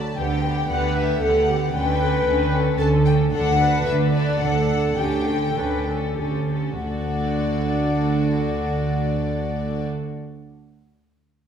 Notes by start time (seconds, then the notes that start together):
Already playing: A5
0.17 D2 D3 B3 G4 G5
0.44 B3 G4
0.70 D2 D3 B3 G4 B4 F#5
0.96 B3 G4 E5
1.23 D2 D3 B3 G4 A4 F#5
1.49 B3 G4
1.74 D2 D3 C#4 A4 B4 G5
2.01 C#4 A4
2.27 D2 D3 C#4 A4
2.54 C#4 A4
2.79 D2 D3 C#4 A4 A5
3.06 C#4 A4 G5
3.32 D2 D3 D4 A4 F#5
3.59 D4 A4 B4
3.86 D2 D3 D4 A4 E5
4.14 D4 A4 D5
4.41 D2 D3 D4 A4 F#5
4.70 D4 A4
4.96 D2 D3 C#4 G4 A4 G5
5.27 C#4 A4
5.56 D2 D3 C#4 A4 B4
5.87 C#4 A4
6.18 D2 D3 C#4 G4 A4
6.52 C#4 A4
6.82 D2 D3 D4 F#4 A4 D5